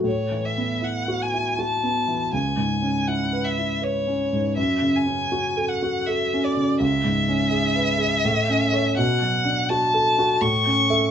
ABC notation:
X:1
M:3/4
L:1/8
Q:1/4=81
K:A
V:1 name="Violin"
c e f g a2 | g2 f e c2 | e g2 f e d | e6 |
f2 a2 c'2 |]
V:2 name="Grand piano"
(3A,, E, B, (3E F E (3F B, E, | (3C,, G,, C (3E B E (3B C G,, | (3F,, C, C (3F A F (3A C C, | (3C,, G,, C (3G B G (3A,, C [Ac] |
(3B,, F, D (3F A F (3A,, C [Ae] |]